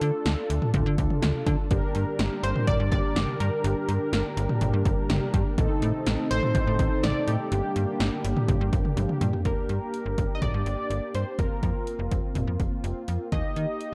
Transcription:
Already playing: D4 F4 A4
0.01 D3, closed hi-hat
0.26 D2, snare, closed hi-hat
0.50 D2, closed hi-hat
0.62 mid tom
0.74 D2, kick, closed hi-hat, mid tom
0.86 D3
0.98 D2, kick, closed hi-hat
1.10 mid tom
1.22 D2, snare, closed hi-hat, mid tom
1.47 D3, kick, closed hi-hat, cowbell
1.71 G1 D3 G3 A#3 D4 G4 A#4, kick, closed hi-hat
1.95 G2, closed hi-hat
2.19 G1, snare, closed hi-hat
2.43 G1 C5, closed hi-hat
2.56 mid tom
2.67 G1 D5, kick, closed hi-hat, mid tom
2.80 G2
2.92 G1 D5, kick, closed hi-hat
3.16 G1, snare, closed hi-hat, mid tom
3.40 G2 A#4, closed hi-hat
3.64 G1, closed hi-hat
3.89 G2, closed hi-hat
4.13 G1, snare, closed hi-hat
4.37 G1, closed hi-hat
4.49 mid tom
4.61 G1, closed hi-hat, mid tom
4.73 G2
4.85 G1, kick, closed hi-hat
5.09 G1, snare, closed hi-hat, mid tom
5.34 G2, kick, closed hi-hat
5.58 A1 C3 D#3 A3 C4 D#4 A4, kick, closed hi-hat
5.82 A2, closed hi-hat
6.06 A1, snare, closed hi-hat
6.31 A1 C5, closed hi-hat
6.43 mid tom
6.55 A1, kick, closed hi-hat, mid tom
6.67 A2
6.79 A1, kick, closed hi-hat
7.03 A1 D5, snare, closed hi-hat, mid tom
7.28 A2 G4, closed hi-hat
7.52 G1 D3 G3 A#3 D4 G4, closed hi-hat
7.76 G2, closed hi-hat
8.00 G1, snare, closed hi-hat
8.24 G1, closed hi-hat
8.37 mid tom
8.48 G1, kick, closed hi-hat, mid tom
8.61 G2
8.73 G1, kick, closed hi-hat
8.85 mid tom
8.97 G1, closed hi-hat, high tom
9.09 mid tom
9.21 G2, closed hi-hat, mid tom
9.33 floor tom
9.45 G1 A#3 D4 G4 A#4, kick, closed hi-hat
9.69 G2, closed hi-hat
9.94 closed hi-hat
10.06 G1
10.18 G1, kick, closed hi-hat
10.35 D#5
10.42 G1 D5, kick, closed hi-hat, mid tom
10.54 G2
10.66 G1, closed hi-hat
10.90 G1, closed hi-hat
11.15 G2 C5, closed hi-hat
11.39 F1 A#3 C4 F4 A#4, kick, closed hi-hat
11.63 F2, kick, closed hi-hat
11.87 closed hi-hat
11.99 F1
12.12 F1, kick, closed hi-hat
12.35 F1, closed hi-hat, mid tom
12.47 F2
12.60 F1, kick, closed hi-hat
12.84 F1, closed hi-hat
13.08 F2, closed hi-hat
13.32 D#2 A#3 D#4 G4 D#5, kick, closed hi-hat
13.56 D#3, closed hi-hat
13.81 closed hi-hat

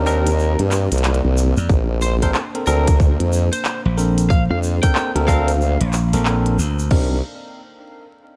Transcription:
Already playing: D#2 A#3 C4 D5
0.06 C4 D4 D#4 A#4, shaker
0.27 closed hi-hat, shaker
0.39 shaker
0.59 G2, closed hi-hat
0.71 clap, shaker
0.92 C2, closed hi-hat, shaker
0.98 closed hi-hat
1.04 clap, closed hi-hat, shaker
1.14 closed hi-hat
1.25 C2
1.37 shaker
1.57 F2, shaker
1.69 A#1 A#3 D4 C5, kick, shaker
2.02 C5, shaker
2.22 C4 D4 A4 A#4 C5, kick, closed hi-hat, shaker
2.34 clap, shaker
2.55 C4 D4 A4 A#4, closed hi-hat
2.67 D2 C4 D4 A4 A#4, shaker
2.87 kick, closed hi-hat, shaker
3.00 kick, shaker
3.20 F2, closed hi-hat
3.33 shaker
3.53 C5, closed hi-hat, shaker
3.65 clap, shaker
3.85 A#1
3.98 C4 D4 A4 A#4, shaker
4.18 closed hi-hat, shaker
4.30 F5, kick, shaker
4.50 F2 F5
4.63 shaker
4.83 C4 D4 A4 A#4 G5, kick, closed hi-hat, shaker
4.95 clap, shaker
5.15 D2 C4 D4 A4 A#4, closed hi-hat
5.28 C4 D4 A4 A#4 F5, kick, snare, shaker
5.48 closed hi-hat, shaker
5.61 shaker
5.81 A#1, closed hi-hat
5.93 clap, shaker
6.13 A#1 C4 D4 A4 A#4, closed hi-hat, shaker
6.25 C4 D4 A4 A#4, clap, shaker
6.46 closed hi-hat
6.58 D2, shaker
6.79 shaker
6.91 C2 C4 D4 D#4 A#4, kick, crash

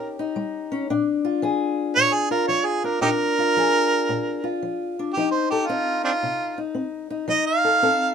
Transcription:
Already playing: A#2 C#4 D#4 G4 A#4
0.19 D#4
0.36 G3
0.72 C#4
0.90 A#2 D4
1.25 F4
1.42 F3 G#4
1.96 A#2 C#5
2.14 G#4
2.31 F4 A#4
2.48 F3 C#5
2.66 G#4
2.84 D4 A#4
3.01 A#2 D4 D#4 G4 A#4
3.39 F4
3.57 F3 G#4
4.09 A#2
4.44 F4
4.63 F3
4.99 D4
5.14 F3 D#4 G4
5.32 C5
5.51 G4 A4
5.67 C4 D#4 F4
6.04 C4 D4 F4
6.23 C3
6.58 D#4
6.75 C4
7.10 D#4
7.28 F3 D#4 D#5
7.47 F5
7.65 A4
7.82 C4 A4

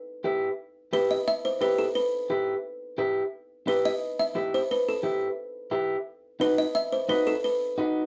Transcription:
Already playing: B4
0.24 E4 G4 B4
0.93 E4 G4 B4
1.11 D#5
1.28 E5
1.45 C5
1.61 E4 G4 B4
1.79 A4
1.95 B4
2.30 E4 G4 B4
2.98 E4 G4 B4
3.67 E4 G4 B4
3.85 D#5
4.19 E5
4.35 E4 G4 B4
4.54 C5
4.71 B4
4.89 A4
5.03 E4 G4 B4
5.71 E4 G4 B4
6.40 D#4 F#4 B4
6.58 D#5
6.75 E5
6.92 C5
7.09 D#4 F#4 B4
7.27 A4
7.44 B4
7.78 D#4 F#4 B4

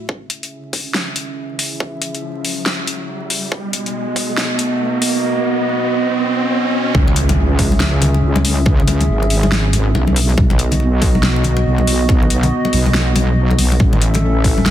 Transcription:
0.09 C#4 G#4 E5, kick, riser
0.30 closed hi-hat
0.43 closed hi-hat
0.73 kick, open hi-hat
0.94 snare
1.16 closed hi-hat
1.59 open hi-hat
1.80 kick
2.02 closed hi-hat
2.15 closed hi-hat
2.45 open hi-hat
2.66 snare
2.87 closed hi-hat
3.30 open hi-hat
3.52 B3 F#4 D#5, kick
3.73 closed hi-hat
3.86 closed hi-hat
4.16 kick, open hi-hat
4.37 snare
4.59 closed hi-hat
5.02 open hi-hat
6.95 C#2 C#4 G#4 E5, kick, impact, high conga
7.08 muted conga, low conga
7.16 closed hi-hat
7.29 closed hi-hat, muted conga, high conga, low conga
7.59 kick, open hi-hat, muted conga
7.72 high conga
7.80 snare, muted conga
8.02 closed hi-hat, high conga, low conga
8.14 muted conga
8.23 C#2
8.36 muted conga, high conga
8.45 open hi-hat
8.66 kick, muted conga, high conga
8.80 low conga
8.87 closed hi-hat, muted conga
9.00 closed hi-hat, high conga, low conga
9.09 G#1
9.23 muted conga
9.30 open hi-hat
9.43 muted conga, high conga
9.52 snare
9.73 closed hi-hat, muted conga, high conga
9.95 B1, muted conga
10.07 high conga
10.16 open hi-hat
10.30 muted conga
10.37 B1 B3 F#4 D#5, kick, high conga
10.50 muted conga, low conga
10.59 closed hi-hat
10.71 closed hi-hat, high conga, low conga
10.80 muted conga
11.02 kick, open hi-hat, muted conga
11.15 high conga
11.23 snare
11.36 muted conga
11.44 closed hi-hat, high conga, low conga
11.57 muted conga
11.66 B1
11.78 high conga
11.87 open hi-hat, muted conga
12.09 kick, muted conga, high conga
12.23 low conga
12.30 closed hi-hat
12.43 closed hi-hat, muted conga, high conga, low conga
12.65 muted conga
12.73 B1, open hi-hat
12.86 high conga
12.94 snare, muted conga
13.16 closed hi-hat, muted conga, high conga
13.51 muted conga, high conga
13.59 B1, open hi-hat
13.72 muted conga
13.80 A1 C#4 A4 E5, kick, high conga
13.93 muted conga, low conga
14.01 closed hi-hat
14.14 closed hi-hat, muted conga, high conga, low conga
14.44 kick, open hi-hat, muted conga
14.58 high conga
14.66 snare, muted conga

